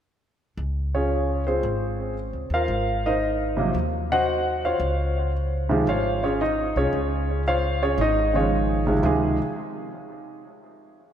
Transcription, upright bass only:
0.57 C#2
1.63 G#1
2.33 C#2
2.50 D#2
2.68 G#1
3.75 D#2
4.80 C#2
5.87 G#1
6.76 C2
6.93 C#2
7.98 G#1
9.03 C#2

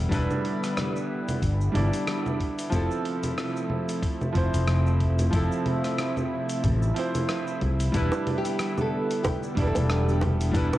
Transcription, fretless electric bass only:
0.11 E1
1.42 G1
1.74 G1
2.72 F1
4.35 F1
4.54 F1
5.33 F1
6.64 A1
7.62 C2
7.94 E1
9.57 E1
9.76 E1
10.54 E1

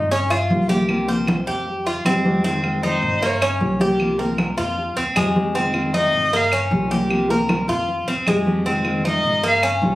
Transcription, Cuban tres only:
Already playing: D#4
0.11 C#4
0.30 F4
0.69 G4
1.08 C5
1.47 G4
1.87 F4
2.06 C4
2.44 C4
2.83 D#4
3.23 A#3
3.42 C#4
3.81 G4
4.19 A#4
4.58 F4
4.97 C4
5.16 G#3
5.55 C4
5.94 D#4
6.33 A#3
6.53 C#4
6.91 G4
7.30 A#4
7.69 F4
8.08 C4
8.28 G#3
8.66 C4
9.05 D#4
9.43 A#3
9.63 C#4

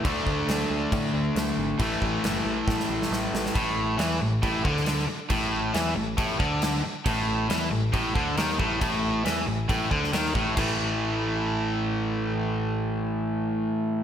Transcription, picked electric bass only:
0.05 D2
0.26 D2
0.48 D2
0.70 D2
0.92 A2
1.14 D2
1.35 D2
1.57 G#1
1.79 A1
2.02 A1
2.24 F#1
2.45 A1
2.68 A2
2.89 A1
3.11 A1
3.34 A1
3.55 A1
3.99 E2
4.21 A1
4.43 A1
4.65 D2
5.09 muted picked electric bass stroke
5.30 A1
5.74 E2
5.96 A1
6.18 A1
6.40 D2
6.84 muted picked electric bass stroke
7.06 A1
7.50 E2
7.72 A1
7.94 A1
8.15 D2
8.38 D#2
8.60 A1
8.82 A1
9.25 E2
9.47 A1
9.69 A1
9.91 D2
10.13 D#2
10.35 A1
10.57 A1

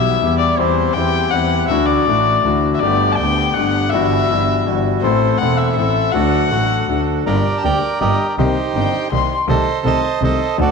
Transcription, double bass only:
Already playing: B1
0.23 E2
0.60 E2
0.96 E2
1.34 E2
1.71 D2
2.07 A1
2.44 D2
2.82 G1
3.19 D2
3.57 G1
3.94 G1
4.30 G1
4.68 G1
5.04 A1
5.41 E1
5.78 A1
6.15 D2
6.52 A1
6.89 D2
7.26 G1
7.64 D2
8.02 G1
8.38 C2
8.75 G1
9.12 C2
9.48 C2
9.84 C2
10.22 C2
10.59 D2

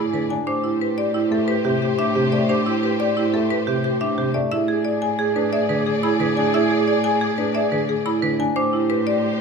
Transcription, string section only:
Already playing: G#4 D5
0.47 G4 C5
4.52 G#4 D5
8.56 G4 C5

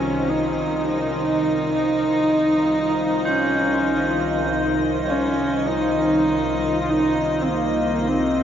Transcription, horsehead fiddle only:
Already playing: C#4
0.29 D#4
0.87 D#4
3.27 C#4
5.06 C#4
5.67 D#4
6.82 F4
6.90 D#4
7.41 C4
7.48 A#3
8.08 C4

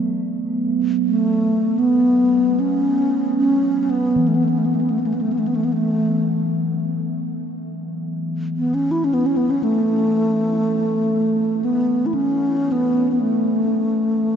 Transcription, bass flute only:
1.06 A3
1.79 B3
2.60 C#4
3.38 C#4
3.83 C#4
3.90 B3
4.28 A3
4.35 B3
4.44 A3
4.49 B3
4.58 A3
4.66 B3
4.75 A3
4.81 B3
4.90 A3
4.99 B3
5.07 A3
5.14 B3
5.21 A3
5.32 B3
5.39 A3
5.47 B3
5.55 A3
5.65 B3
5.73 A3
8.57 B3
8.74 C#4
8.91 E4
9.04 C#4
9.14 B3
9.26 C#4
9.37 B3
9.50 C#4
9.63 A3
11.65 B3
12.06 E4
12.14 C#4
12.72 B3
13.11 B3
13.20 A3

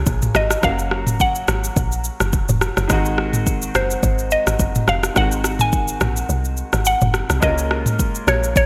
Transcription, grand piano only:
Already playing: F3 A#3 C#4 G#4
0.61 F#3 A#3 C#4
0.66 F#4
2.87 D#3 G#3 C4
2.92 F#4
5.14 D#3 G#3 C4
5.19 F#4
7.40 G#3 A#3 C#4 F4
7.45 A#4

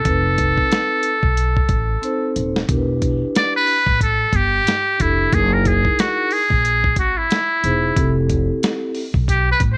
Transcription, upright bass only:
0.05 F1
1.23 B1
1.69 A1
2.36 D#1
2.69 E1
3.87 A1
4.33 G1
5.00 F1
5.33 F#1
6.50 A#1
6.96 G#1
7.64 E1
7.97 F1
9.14 B1
9.60 A1

